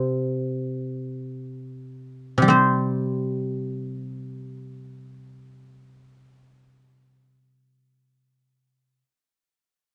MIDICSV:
0, 0, Header, 1, 2, 480
1, 0, Start_track
1, 0, Tempo, 500000
1, 9545, End_track
2, 0, Start_track
2, 0, Title_t, "Guzheng"
2, 0, Program_c, 0, 107
2, 0, Note_on_c, 0, 48, 46
2, 0, Note_on_c, 0, 55, 48
2, 0, Note_on_c, 0, 72, 46
2, 0, Note_on_c, 0, 75, 67
2, 462, Note_off_c, 0, 75, 0
2, 1486, Note_off_c, 0, 55, 0
2, 1548, Note_off_c, 0, 72, 0
2, 2270, Note_off_c, 0, 48, 0
2, 2282, Note_on_c, 0, 48, 31
2, 2324, Note_on_c, 0, 55, 29
2, 2380, Note_on_c, 0, 60, 32
2, 2398, Note_on_c, 0, 72, 43
2, 6757, Note_off_c, 0, 72, 0
2, 7276, Note_off_c, 0, 60, 0
2, 8146, Note_off_c, 0, 55, 0
2, 8646, Note_off_c, 0, 48, 0
2, 9545, End_track
0, 0, End_of_file